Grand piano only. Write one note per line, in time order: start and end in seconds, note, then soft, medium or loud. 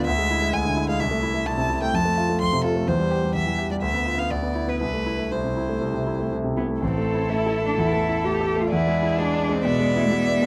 0.07 0.51 D2 soft
0.19 0.37 G#3 soft
0.30 0.49 E4 soft
0.42 0.60 G#3 soft
0.53 0.98 D2 soft
0.65 0.84 D3 soft
0.76 0.95 E4 soft
0.89 1.00 G#3 soft
1.00 1.44 C2 soft
1.11 1.30 A3 soft
1.23 1.41 E4 soft
1.34 1.53 A3 soft
1.46 1.92 C2 soft
1.57 1.77 C3 soft
1.69 1.89 E4 soft
1.81 1.94 A3 soft
1.93 2.40 F2 soft
2.05 2.24 A3 soft
2.18 2.36 F4 soft
2.30 2.48 A3 soft
2.41 2.86 F2 soft
2.53 2.71 C3 soft
2.64 2.83 F4 soft
2.76 2.88 A3 soft
2.87 3.33 E2 soft
2.99 3.18 G3 soft
3.11 3.30 G4 soft
3.23 3.42 G3 soft
3.35 3.80 E2 soft
3.47 3.65 E3 soft
3.59 3.77 G4 soft
3.71 3.82 G3 soft
3.82 4.28 D2 soft
3.94 4.13 B3 soft
4.06 4.25 F4 soft
4.18 4.30 B3 soft
4.30 4.79 D2 soft
4.43 4.62 B3 soft
4.55 4.75 E4 soft
4.68 4.80 B3 soft
4.81 5.30 C2 soft
4.93 5.14 A3 soft
5.06 5.26 E4 soft
5.19 5.39 A3 soft
5.32 5.80 C2 soft
5.44 5.64 C3 soft
5.57 5.77 E4 soft
5.69 5.89 A3 soft
5.81 6.30 C2 soft
5.94 6.14 C3 soft
6.07 6.27 E4 soft
6.19 6.39 A3 soft
6.32 6.80 C2 soft
6.44 6.65 C3 soft
6.57 6.77 E4 soft
6.69 6.82 A3 soft
6.82 7.74 A1 soft
6.98 7.24 A3 soft
7.14 7.39 E4 soft
7.30 7.55 A3 soft
7.46 7.71 A4 soft
7.62 7.87 A3 soft
7.77 8.02 E2 soft
7.93 8.18 A3 soft
8.09 8.34 E4 soft
8.25 8.50 A3 soft
8.40 8.65 A4 soft
8.56 8.72 A3 soft
8.72 9.62 E2 soft
8.87 9.12 G#3 soft
9.03 9.27 E4 soft
9.18 9.43 G#3 soft
9.34 9.59 D5 soft
9.49 9.74 G#3 soft
9.65 9.89 B2 soft
9.80 10.05 G#3 soft
9.96 10.20 E4 soft
10.12 10.36 G#3 soft
10.27 10.46 D5 soft
10.42 10.46 G#3 soft